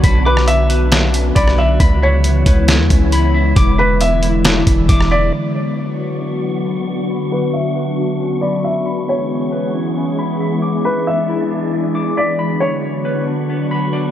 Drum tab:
HH |x---x-x-x-x-x---|x---x-x-x-x-x---|x---x-x-x-x-x---|----------------|
SD |---r----o----r--|--------o-------|--------o----r--|----------------|
BD |o-----------o---|o-----o---o-----|o---------o-o---|----------------|

HH |----------------|----------------|----------------|----------------|
SD |----------------|----------------|----------------|----------------|
BD |----------------|----------------|----------------|----------------|